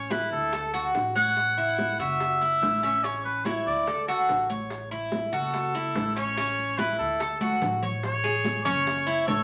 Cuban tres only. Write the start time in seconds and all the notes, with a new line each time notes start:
0.11 E4
0.53 A4
0.74 F#4
1.15 C#5
1.58 E4
2.00 F#4
2.41 E4
2.83 C#4
3.04 C#4
3.46 E4
3.87 A4
4.08 F#4
4.50 C#5
4.91 E4
5.33 F#4
5.75 E4
6.16 C#4
6.37 C#4
6.78 E4
7.20 A4
7.41 F#4
7.83 C#5
8.24 G#4
8.65 C#4
9.07 E4
9.28 C#5